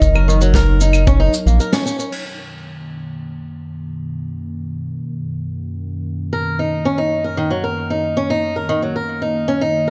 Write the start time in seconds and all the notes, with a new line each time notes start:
Already playing: F#3 D#4 A#4
0.02 F#1, kick, shaker
0.15 A#4, claves
0.28 D#3, shaker
0.41 F#3, shaker
0.54 A#4, kick, snare, shaker
0.81 D#4, shaker
0.93 claves, shaker
1.07 C#4, kick, shaker
1.20 D#4
1.34 shaker
1.46 A#1 A#3, shaker
1.60 A#4, shaker
1.72 C#4, snare
1.86 C#4, shaker
1.99 C#4, shaker
2.12 F#2 B2 D#3 A#3, crash
6.33 A#3 A#4
6.59 D#4
6.85 C#4
6.98 D#4
7.24 A#4
7.37 D#3
7.50 F#3
7.64 A#4
7.90 D#4
8.17 C#4
8.30 D#4
8.56 A#4
8.69 D#3
8.82 F#3
8.96 A#4
9.22 D#4
9.48 C#4
9.61 D#4